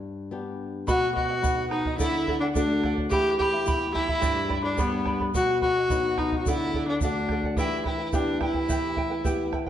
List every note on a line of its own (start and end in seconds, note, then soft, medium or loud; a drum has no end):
0.00 0.84 G2 medium
0.31 0.86 B3 soft
0.31 0.86 D4 soft
0.31 0.86 G4 soft
0.87 1.96 B2 medium
0.87 1.14 F#4 loud
0.87 1.14 B4 medium
0.87 1.15 D#5 medium
0.87 1.16 F#5 medium
0.87 bombo low medium
0.87 shaker loud
1.15 1.67 F#4 loud
1.15 1.30 B4 medium
1.15 1.29 D#5 medium
1.15 1.28 F#5 medium
1.15 bombo low medium
1.29 1.42 D#5 soft
1.29 1.43 F#5 medium
1.42 1.97 B3 soft
1.42 1.97 D#4 soft
1.42 1.98 F#4 medium
1.42 1.70 B4 medium
1.42 1.70 D#5 medium
1.42 1.71 F#5 medium
1.42 bombo low medium
1.42 shaker medium
1.71 1.97 D#4 medium
1.71 1.85 B4 medium
1.71 1.86 D#5 medium
1.71 1.85 F#5 medium
1.71 bombo rim medium
1.85 2.00 D#5 soft
1.85 1.99 F#5 medium
1.85 bombo low medium
1.98 3.07 D3 medium
1.98 2.38 E4 loud
1.98 2.27 A4 medium
1.98 2.28 D5 medium
1.98 2.28 F#5 medium
1.98 bombo low medium
1.98 shaker medium
2.27 2.42 A4 medium
2.27 2.42 D5 medium
2.27 2.41 F#5 medium
2.27 bombo low medium
2.40 2.47 D4 medium
2.40 2.55 D5 soft
2.40 2.55 F#5 medium
2.54 3.09 A3 medium
2.54 2.93 D4 medium
2.54 3.09 D4 soft
2.54 3.10 F#4 medium
2.54 2.83 A4 medium
2.54 2.84 D5 medium
2.54 2.84 F#5 medium
2.54 bombo low medium
2.54 shaker medium
2.84 2.97 A4 medium
2.84 2.97 D5 medium
2.84 2.97 F#5 medium
2.84 bombo rim soft
2.84 bombo low soft
2.98 3.11 D5 soft
2.98 3.11 F#5 medium
2.98 bombo low medium
3.10 4.19 E3 medium
3.10 3.39 E4 medium
3.10 3.36 G4 loud
3.10 3.39 G4 medium
3.10 3.40 E5 medium
3.10 3.39 G5 medium
3.10 3.40 B5 medium
3.10 bombo low medium
3.10 shaker medium
3.38 3.53 E4 medium
3.38 3.90 G4 loud
3.38 3.52 E5 medium
3.38 3.53 G5 medium
3.38 3.51 B5 medium
3.38 bombo low medium
3.52 3.66 E4 soft
3.52 3.66 E5 soft
3.52 3.66 B5 medium
3.66 4.20 B3 soft
3.66 4.20 E4 soft
3.66 3.93 E4 medium
3.66 4.21 G4 medium
3.66 3.95 G4 medium
3.66 3.94 E5 medium
3.66 3.93 G5 medium
3.66 3.94 B5 medium
3.66 bombo low medium
3.66 shaker medium
3.94 4.60 E4 loud
3.94 4.08 E4 medium
3.94 4.08 E5 medium
3.94 4.08 G5 medium
3.94 4.07 B5 medium
3.94 bombo rim soft
3.94 bombo low medium
4.08 4.21 E4 soft
4.08 4.22 E5 soft
4.08 4.21 B5 soft
4.08 bombo low medium
4.21 5.30 G2 medium
4.21 4.49 G4 medium
4.21 4.48 B4 medium
4.21 4.49 D5 medium
4.21 4.48 G5 medium
4.21 4.49 B5 medium
4.21 bombo low medium
4.21 shaker loud
4.49 4.64 B4 medium
4.49 4.63 D5 medium
4.49 4.63 G5 medium
4.49 4.62 B5 medium
4.49 bombo low medium
4.63 4.80 D4 medium
4.63 4.77 B4 soft
4.63 4.78 D5 soft
4.63 4.78 B5 medium
4.77 5.32 G3 soft
4.77 5.32 B3 soft
4.77 5.20 B3 medium
4.77 5.32 D4 medium
4.77 5.06 G4 medium
4.77 5.05 B4 medium
4.77 5.06 D5 medium
4.77 5.05 G5 medium
4.77 5.06 B5 medium
4.77 bombo low medium
4.77 shaker loud
5.05 5.20 B4 medium
5.05 5.20 D5 medium
5.05 5.20 G5 medium
5.05 5.19 B5 medium
5.05 bombo rim soft
5.05 bombo low soft
5.20 5.34 B4 soft
5.20 5.34 D5 soft
5.20 5.34 B5 soft
5.20 bombo low soft
5.34 6.42 B2 medium
5.34 5.60 F#4 loud
5.34 5.61 B4 medium
5.34 5.62 D#5 medium
5.34 5.62 F#5 medium
5.34 bombo low medium
5.34 shaker loud
5.62 6.20 F#4 loud
5.62 5.76 B4 medium
5.62 5.76 D#5 medium
5.62 5.75 F#5 medium
5.62 bombo low medium
5.77 5.90 D#5 soft
5.90 6.44 F#3 medium
5.90 6.44 B3 soft
5.90 6.44 D#4 medium
5.90 6.17 B4 medium
5.90 6.17 D#5 medium
5.90 6.18 F#5 medium
5.90 bombo low medium
5.90 shaker loud
6.18 6.38 D#4 medium
6.18 6.32 B4 medium
6.18 6.32 D#5 medium
6.18 6.31 F#5 medium
6.18 bombo rim soft
6.18 bombo low medium
6.32 6.46 D#5 soft
6.32 6.46 F#5 medium
6.32 bombo low medium
6.39 6.49 F#4 medium
6.46 7.54 D3 medium
6.46 6.87 E4 loud
6.46 6.73 A4 medium
6.46 6.74 D5 medium
6.46 6.75 F#5 medium
6.46 bombo low medium
6.46 shaker loud
6.74 6.88 A4 medium
6.74 6.88 D5 medium
6.74 6.88 F#5 medium
6.74 bombo low medium
6.88 7.01 D4 medium
6.88 7.03 D5 soft
6.88 7.02 F#5 medium
7.01 7.56 A3 soft
7.01 7.56 D4 soft
7.01 7.41 D4 medium
7.01 7.56 F#4 medium
7.01 7.30 A4 medium
7.01 7.31 D5 medium
7.01 7.31 F#5 medium
7.01 bombo low medium
7.01 shaker medium
7.29 7.44 A4 medium
7.29 7.44 D5 medium
7.29 7.44 F#5 medium
7.29 bombo rim soft
7.29 bombo low medium
7.43 7.58 D5 soft
7.43 7.58 F#5 medium
7.43 bombo low medium
7.56 8.65 E3 medium
7.56 7.83 E4 loud
7.56 7.84 E4 medium
7.56 7.85 G4 medium
7.56 7.84 B4 medium
7.56 7.84 E5 medium
7.56 7.85 G5 medium
7.56 bombo low medium
7.56 shaker medium
7.85 7.99 E4 medium
7.85 8.06 E4 medium
7.85 7.98 B4 medium
7.85 7.99 E5 medium
7.85 7.98 G5 medium
7.85 bombo low medium
7.99 8.12 E4 soft
7.99 8.12 B4 soft
7.99 8.12 G5 medium
8.06 8.16 E4 medium
8.13 8.67 B3 medium
8.13 8.42 D4 medium
8.13 8.39 E4 medium
8.13 8.67 E4 soft
8.13 8.41 G4 medium
8.13 8.67 G4 medium
8.13 8.40 B4 medium
8.13 8.39 E5 medium
8.13 8.41 G5 medium
8.13 bombo low medium
8.13 shaker medium
8.41 8.55 E4 medium
8.41 9.50 E4 medium
8.41 8.55 B4 medium
8.41 8.54 E5 medium
8.41 8.54 G5 medium
8.41 bombo rim medium
8.41 bombo low medium
8.54 8.68 E4 soft
8.54 8.69 B4 soft
8.54 8.69 G5 soft
8.54 bombo low medium
8.69 9.69 E3 medium
8.69 8.96 E4 medium
8.69 8.97 G4 medium
8.69 8.97 B4 medium
8.69 8.95 E5 medium
8.69 8.96 G5 medium
8.69 bombo low medium
8.69 shaker medium
8.96 9.11 E4 medium
8.96 9.10 B4 medium
8.96 9.10 E5 medium
8.96 9.09 G5 medium
8.96 bombo low medium
9.10 9.24 E4 medium
9.10 9.24 B4 medium
9.10 9.24 G5 medium
9.24 9.69 B3 medium
9.24 9.52 E4 loud
9.24 9.69 E4 soft
9.24 9.52 G4 medium
9.24 9.69 G4 medium
9.24 9.52 B4 medium
9.24 9.51 E5 medium
9.24 9.53 G5 medium
9.24 bombo low medium
9.24 shaker medium
9.52 9.67 E4 medium
9.52 9.66 B4 medium
9.52 9.66 E5 medium
9.52 9.65 G5 medium
9.52 bombo rim soft
9.52 bombo low soft
9.66 bombo low soft